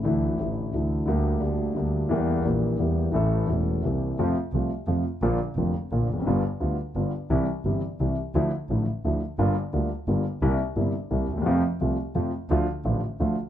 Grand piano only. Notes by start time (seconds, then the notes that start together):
0.03 D2 D3 E3 A3 E4
0.37 A1 A2 D3 E3 A3
0.41 E4
0.71 D2 D3 E3 A3
0.76 E4
1.06 D2 D3 G3 A#3
1.10 G4
1.40 D2 D3 G3 A#3 G4
1.74 D2 D3 G3 A#3
1.78 G4
2.09 E2 E3 G3 A#3 G4
2.43 A#1 A#2 E3 G3 A#3
2.47 G4
2.77 E2 E3 G3 A#3
2.82 G4
3.12 A1 A2 E3 A3 C#4 A4
3.47 E1 E2 E3 A3 C#4 A4
3.82 C2 C3 E3 A#3 C4
3.87 G4
4.19 F2 C3 F3 A3 F4
4.54 C2 C3 F3 A3 F4
4.87 F2 C3 F3 A3 F4
5.23 A#1 A#2 D3 F3 A#3 F4
5.57 F1 F2 D3 F3 A#3 F4
5.92 A#1 A#2 D3 F3 A#3 F4
6.13 E2
6.18 F2
6.22 F#2
6.26 G1 G2 D3 G3 B3 F4
6.60 D2 D3 G3 B3 F4
6.95 G1 G2 D3 G3 B3 F4
7.30 C2 C3 E3 G3 E4
7.65 G1 G2 C3 E3 G3 E4
8.00 C2 C3 E3 G3 E4
8.35 D2 D3 F3 A3 E4
8.70 A1 A2 D3 F3 A3 E4
9.05 D2 D3 F3 A3 E4
9.39 G1 G2 D3 G3 A#3 F4
9.73 D2 D3 G3 A#3 F4
10.08 G1 G2 D3 G3 A#3 F4
10.42 C2 C3 G3 A#3 E4
10.76 G1 G2 C3 G3 A#3 E4
11.10 C2 C3 G3 A#3 E4
11.33 D2
11.38 D#2 E2
11.46 F2 C3 F3 A3 F4
11.81 C2 C3 F3 A3 F4
12.15 F2 C3 F3 A3 F4
12.51 D2 D3 F3 A3 F4
12.85 A1 A2 D3 F3 A3 F4
13.20 D2 D3 F3 A3 F4